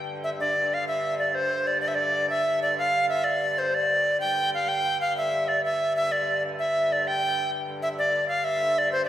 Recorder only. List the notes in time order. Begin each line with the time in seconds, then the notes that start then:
0.24 E5
0.40 D5
0.74 F5
0.88 E5
1.19 D5
1.35 C5
1.67 D5
1.81 D5
1.88 E5
1.95 D5
2.30 E5
2.62 D5
2.79 F5
3.09 E5
3.24 D5
3.58 C5
3.74 D5
4.20 G5
4.54 F5
4.68 G5
5.01 F5
5.17 E5
5.48 D5
5.65 E5
5.96 E5
6.12 D5
6.59 E5
6.92 D5
7.07 G5
7.82 E5
7.98 D5
8.28 F5
8.44 E5
8.78 D5
8.92 C5
9.05 D5